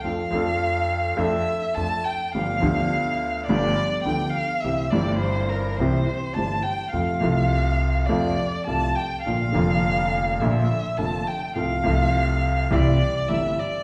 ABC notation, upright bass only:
X:1
M:4/4
L:1/8
Q:1/4=104
K:F
V:1 name="Upright bass" clef=bass
F,, F,,3 F,, z F,, z | G,,, D,,3 G,,, z D,, z | C,, G,,,3 C,, z G,,, z | F,, C,,3 F,, z C,, z |
B,,, F,,,3 B,,, z F,,, z | C,, C,,3 C,, z G,,, z |]